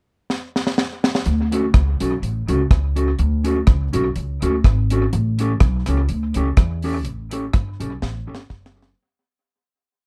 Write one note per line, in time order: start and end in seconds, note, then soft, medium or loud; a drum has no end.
0.30 snare medium
0.56 snare medium
0.67 snare medium
0.78 snare medium
1.04 snare loud
1.15 snare medium
1.25 1.67 D2 loud
1.25 closed hi-hat medium
1.52 1.64 C#4 medium
1.52 1.65 F#4 medium
1.52 1.65 A4 medium
1.52 closed hi-hat medium
1.74 1.97 C#2 medium
1.74 muted clean electric guitar stroke soft
1.74 kick loud
1.74 cross-stick loud
1.74 closed hi-hat medium
2.00 2.19 B1 medium
2.00 2.13 C#4 medium
2.00 2.13 F#4 medium
2.00 2.13 A4 medium
2.00 closed hi-hat medium
2.22 2.45 A1 medium
2.22 closed hi-hat medium
2.48 2.67 C#2 medium
2.48 2.61 C#4 medium
2.48 2.61 F#4 medium
2.48 2.61 A4 medium
2.48 closed hi-hat medium
2.71 3.12 C#2 medium
2.71 kick loud
2.71 cross-stick loud
2.71 closed hi-hat medium
2.96 3.09 C#4 medium
2.96 3.09 F#4 medium
2.96 3.09 A4 medium
2.96 closed hi-hat medium
3.19 3.60 D2 loud
3.19 closed hi-hat medium
3.44 3.57 C#4 medium
3.44 3.58 F#4 loud
3.44 3.58 A4 medium
3.44 closed hi-hat medium
3.67 3.90 C#2 medium
3.67 muted clean electric guitar stroke soft
3.67 kick loud
3.67 cross-stick loud
3.67 closed hi-hat medium
3.93 4.13 B1 medium
3.93 4.06 C#4 medium
3.93 4.06 F#4 loud
3.93 4.06 A4 medium
3.93 closed hi-hat medium
4.16 4.38 C#2 medium
4.16 closed hi-hat medium
4.42 4.61 D2 medium
4.42 4.54 C#4 medium
4.42 4.55 F#4 medium
4.42 4.55 A4 loud
4.42 closed hi-hat medium
4.64 5.06 G#1 medium
4.64 muted clean electric guitar stroke soft
4.64 kick loud
4.64 cross-stick loud
4.64 closed hi-hat medium
4.90 5.03 C#4 medium
4.90 5.04 F#4 medium
4.90 5.04 A4 loud
4.90 closed hi-hat medium
5.13 5.54 A1 loud
5.13 closed hi-hat medium
5.39 5.52 C#4 medium
5.39 5.52 G4 medium
5.39 5.52 A4 medium
5.39 closed hi-hat medium
5.60 5.83 B1 medium
5.60 muted clean electric guitar stroke soft
5.60 kick loud
5.60 cross-stick loud
5.60 closed hi-hat medium
5.86 6.06 C#2 medium
5.86 6.00 C#4 medium
5.86 6.00 G4 medium
5.86 6.00 A4 medium
5.86 cross-stick medium
5.86 closed hi-hat medium
6.09 6.32 D2 medium
6.09 closed hi-hat medium
6.34 6.55 C#2 medium
6.34 6.48 C#4 medium
6.34 6.49 G4 medium
6.34 6.49 A4 medium
6.34 closed hi-hat medium
6.57 7.06 E2 medium
6.57 muted clean electric guitar stroke soft
6.57 kick loud
6.57 cross-stick loud
6.57 closed hi-hat medium
6.82 6.96 C#4 medium
6.82 6.96 G4 medium
6.82 6.97 A4 medium
6.82 open hi-hat medium
7.05 7.47 A1 medium
7.05 closed hi-hat medium
7.31 7.45 C#4 medium
7.31 7.45 G4 medium
7.31 7.45 A4 medium
7.31 closed hi-hat medium
7.53 7.76 G1 medium
7.53 muted clean electric guitar stroke soft
7.53 kick loud
7.53 cross-stick loud
7.53 closed hi-hat medium
7.80 7.99 B1 medium
7.80 7.92 C#4 medium
7.80 7.93 G4 medium
7.80 7.93 A4 medium
7.80 closed hi-hat medium
8.02 8.25 A1 medium
8.02 snare medium
8.27 8.47 G1 medium
8.27 8.40 C#4 medium
8.27 8.40 G4 medium
8.27 8.41 A4 loud
8.35 snare medium
8.50 8.92 F#1 medium
8.50 kick loud
8.50 snare medium
8.66 snare loud
8.76 8.88 C#4 medium
8.76 8.89 G4 medium
8.76 8.89 A4 medium
8.83 snare medium